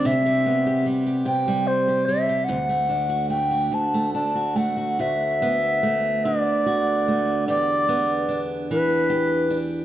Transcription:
<<
  \new Staff \with { instrumentName = "Flute" } { \time 6/8 \key d \mixolydian \tempo 4. = 49 e''4 r8 g''8 c''8 e''8 | fis''4 g''8 a''8 a''8 fis''8 | e''4. d''4. | d''4 r8 b'4 r8 | }
  \new Staff \with { instrumentName = "Steel-string acoustic guitar" } { \time 6/8 \key d \mixolydian c16 g16 b16 g'16 g16 g'16 c16 g8 g'16 g16 g'16 | d,16 a16 d'16 fis'16 a16 fis'16 d,16 a16 d'16 fis'16 a16 fis'16 | <d, fis'>8 b8 a8 d8 fis'8 a8 | <e, g'>8 b8 d'8 e8 g'8 d'8 | }
>>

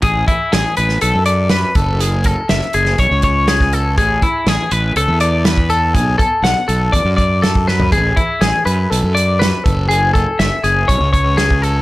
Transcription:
<<
  \new Staff \with { instrumentName = "Clean electric guitar" } { \time 4/4 \key a \major \tempo 4 = 122 gis'8 e'8 gis'8 b'8 a'8 d''8 b'8 a'8 | gis'8 a'8 e''8 gis'8 cis''8 cis''8 gis'8 a'8 | gis'8 e'8 gis'8 b'8 a'8 d''8 b'8 a'8 | gis'8 a'8 fis''8 a'8 d''8 d''8 a'8 b'8 |
gis'8 e'8 gis'8 b'8 a'8 d''8 b'8 a'8 | gis'8 a'8 e''8 gis'8 cis''8 cis''8 gis'8 a'8 | }
  \new Staff \with { instrumentName = "Fingered electric bass" } { \clef bass \time 4/4 \key a \major a,,8 r8 a,,16 r16 a,,8 b,,16 fis,4~ fis,16 fis,,8~ | fis,,4 fis,,16 r16 fis,,8 b,,16 cis,4.~ cis,16 | a,,8 r8 a,,16 r16 a,,8 cis,16 e,4.~ e,16 | b,,8 r8 b,,16 r16 b,,8 e,16 fis,4.~ fis,16 |
a,,8 r8 a,,16 r16 fis,8 b,,16 fis,4~ fis,16 fis,,8~ | fis,,4 fis,,16 r16 fis,,8 b,,16 cis,4.~ cis,16 | }
  \new DrumStaff \with { instrumentName = "Drums" } \drummode { \time 4/4 <hh bd>8 <hh bd>8 <hh sn>8 hh16 sn16 hh8 hh8 <hh sn>8 <hh bd>8 | hh8 <hh bd>8 <hh sn>16 sn16 hh16 sn16 <hh bd>8 <hh bd>8 <hh sn>16 <bd sn>16 hh8 | <hh bd>8 <hh bd>8 <hh sn>8 hh8 hh8 hh8 <hh sn>16 bd16 hh8 | <hh bd>8 <hh bd>8 <hh sn>8 hh8 <hh bd>8 <hh bd>8 <hh sn>16 bd16 sn16 tomfh16 |
<hh bd>8 <hh bd>8 <hh sn>8 hh8 hh8 hh8 <hh sn>8 <hh bd>8 | hh8 <hh bd>8 <hh sn>8 hh8 <hh bd>8 <hh bd>8 <hh sn>16 bd16 hh8 | }
>>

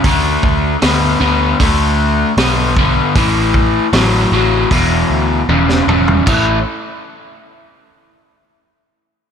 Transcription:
<<
  \new Staff \with { instrumentName = "Overdriven electric guitar" } { \clef bass \time 4/4 \key a \major \tempo 4 = 77 <d a>4 <d b>8 <d b>8 <d a>4 <d b>8 <d b>8 | <a, e>4 <a, fis>8 <a, fis>8 <e, b,>4 <e, cis>8 <e, cis>8 | <a, e a>8 r2. r8 | }
  \new Staff \with { instrumentName = "Picked electric bass" } { \clef bass \time 4/4 \key a \major d,8 d,8 d,8 d,8 d,4 b,,4 | a,,4 a,,8 a,,8 e,,8 d,8 e,,8 e,,8 | a,,8 r2. r8 | }
  \new DrumStaff \with { instrumentName = "Drums" } \drummode { \time 4/4 <hho bd>8 bd8 <hho sn>4 <hho bd>4 <hho sn>8 bd8 | <hho bd>8 bd8 <hho sn>4 <hho bd>4 tommh16 sn16 toml16 tomfh16 | <cymc bd>4 r4 r4 r4 | }
>>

